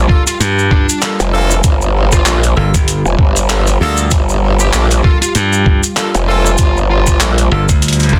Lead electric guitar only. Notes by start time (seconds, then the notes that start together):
0.09 F4
0.27 F4
0.71 D4
2.13 F4
2.26 F4
4.60 G4
4.73 G4
5.04 F4
5.22 F4
6.28 F4
6.90 F4
8.13 D4